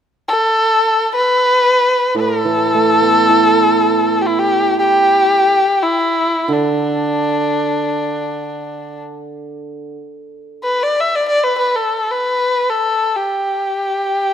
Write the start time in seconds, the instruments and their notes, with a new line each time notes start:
0.28 erhu A4
1.15 erhu B4
2.15 hammered dulcimer A2
2.20 erhu A#4
2.39 erhu A4
2.45 hammered dulcimer E3
2.74 hammered dulcimer A3
3.02 hammered dulcimer B3
3.29 hammered dulcimer E4
4.21 erhu G4
4.27 erhu E4
4.39 erhu G4
4.79 erhu G4
5.83 erhu E4
6.48 hammered dulcimer D3
6.53 erhu D4
10.63 erhu B4
10.83 erhu D5
11.00 erhu E5
11.15 erhu D5
11.28 erhu D5
11.40 erhu B4 D5
11.58 erhu B4
11.76 erhu A4
12.11 erhu B4
12.69 erhu A4
13.16 erhu G4